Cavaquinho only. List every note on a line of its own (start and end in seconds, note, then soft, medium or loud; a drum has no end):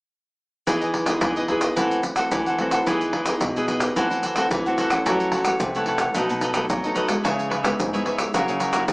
0.67 0.80 E4 soft
0.67 0.80 G#4 soft
0.67 0.81 B4 soft
0.67 0.80 D#5 soft
0.81 0.93 G#4 soft
0.81 0.93 B4 soft
0.81 0.93 D#5 soft
0.93 muted cavaquinho stroke soft
1.06 1.21 G#4 soft
1.06 1.21 B4 soft
1.06 1.20 D#5 soft
1.22 1.35 E4 soft
1.22 1.35 G#4 soft
1.22 1.36 B4 soft
1.22 1.36 D#5 soft
1.37 1.49 G#4 soft
1.37 1.49 B4 medium
1.37 1.49 D#5 medium
1.49 1.62 E4 medium
1.49 1.62 G#4 medium
1.49 1.61 B4 medium
1.49 1.60 D#5 medium
1.61 1.76 G#4 soft
1.61 1.76 B4 soft
1.61 1.75 D#5 soft
1.78 2.02 F#4 soft
1.78 2.03 A4 soft
1.78 2.03 C5 soft
1.78 2.04 F#5 soft
2.04 muted cavaquinho stroke soft
2.16 2.45 A4 soft
2.16 2.44 C5 soft
2.16 2.44 F#5 medium
2.47 2.58 A4 soft
2.47 2.59 C5 soft
2.47 2.59 F#5 soft
2.59 2.72 F#4 soft
2.59 2.72 A4 soft
2.59 2.72 C5 soft
2.59 2.71 F#5 soft
2.72 2.86 A4 soft
2.72 2.86 C5 medium
2.72 2.85 F#5 medium
2.88 3.13 E4 medium
2.88 3.14 G#4 medium
2.88 3.14 B4 medium
2.88 3.15 D#5 medium
3.15 3.27 E4 soft
3.15 3.27 G#4 soft
3.15 3.26 B4 soft
3.15 3.25 D#5 soft
3.26 3.55 G#4 soft
3.26 3.54 B4 soft
3.26 3.53 D#5 soft
3.57 3.65 E4 medium
3.57 3.65 G#4 medium
3.57 3.66 B4 medium
3.57 3.66 D#5 medium
3.68 3.81 E4 soft
3.68 3.82 G#4 medium
3.68 3.81 B4 medium
3.68 3.80 D#5 medium
3.81 3.96 G#4 soft
3.81 3.95 B4 soft
3.81 3.94 D#5 soft
3.97 4.22 F#4 medium
3.97 4.23 A4 medium
3.97 4.23 C5 medium
3.97 4.24 F#5 medium
4.23 4.35 F#4 soft
4.23 4.35 A4 soft
4.23 4.36 C5 soft
4.23 4.36 F#5 soft
4.36 4.46 F#4 medium
4.36 4.46 A4 medium
4.36 4.46 C5 medium
4.36 4.46 F#5 medium
4.66 4.78 A4 soft
4.66 4.79 C5 soft
4.66 4.78 F#5 soft
4.78 4.91 F#4 medium
4.78 4.91 A4 medium
4.78 4.91 C5 medium
4.78 4.89 F#5 medium
4.91 5.05 A4 soft
4.91 5.05 C5 soft
4.91 5.04 F#5 soft
5.07 5.32 E4 medium
5.07 5.33 A4 medium
5.07 5.33 C#5 medium
5.07 5.34 F#5 medium
5.33 5.46 E4 soft
5.33 5.46 A4 soft
5.33 5.45 C#5 soft
5.33 5.44 F#5 soft
5.45 5.73 A4 soft
5.45 5.73 C#5 soft
5.45 5.72 F#5 soft
5.75 5.84 E4 medium
5.75 5.84 A4 medium
5.75 5.84 C#5 medium
5.75 5.85 F#5 medium
5.87 6.00 E4 medium
5.87 6.00 A4 medium
5.87 5.99 C#5 medium
5.87 5.98 F#5 medium
5.99 6.14 A4 soft
5.99 6.14 C#5 soft
5.99 6.13 F#5 soft
6.15 6.40 D#4 medium
6.15 6.41 A4 medium
6.15 6.42 B4 medium
6.15 6.42 D#5 medium
6.42 6.52 D#4 soft
6.42 6.53 A4 soft
6.42 6.53 B4 soft
6.42 6.54 D#5 soft
6.54 6.64 D#4 medium
6.54 6.65 A4 medium
6.54 6.65 B4 medium
6.54 6.65 D#5 medium
6.84 6.94 A4 soft
6.84 6.95 B4 soft
6.84 6.95 D#5 soft
6.94 7.09 D#4 medium
6.94 7.08 A4 medium
6.94 7.07 B4 medium
6.94 7.06 D#5 medium
7.07 7.23 A4 soft
7.07 7.22 B4 soft
7.07 7.22 D#5 soft
7.23 7.48 E4 medium
7.23 7.49 B4 medium
7.23 7.49 C#5 medium
7.23 7.50 E5 medium
7.49 7.63 E4 soft
7.49 7.63 B4 soft
7.49 7.62 C#5 soft
7.49 7.61 E5 soft
7.63 7.92 B4 soft
7.63 7.91 C#5 soft
7.63 7.91 E5 soft
7.93 8.02 E4 medium
7.93 8.03 B4 medium
7.93 8.03 C#5 medium
7.93 8.03 E5 medium
8.05 8.19 E4 medium
8.05 8.18 B4 medium
8.05 8.17 C#5 medium
8.05 8.16 E5 medium
8.17 8.33 B4 soft
8.17 8.32 C#5 soft
8.17 8.32 E5 soft
8.34 8.58 F#4 medium
8.34 8.59 A#4 medium
8.34 8.60 C#5 medium
8.34 8.60 E5 medium
8.60 8.71 F#4 soft
8.60 8.72 A#4 soft
8.60 8.72 C#5 soft
8.60 8.73 E5 soft
8.73 8.83 F#4 medium
8.73 8.83 A#4 medium
8.73 8.84 C#5 medium
8.73 8.84 E5 medium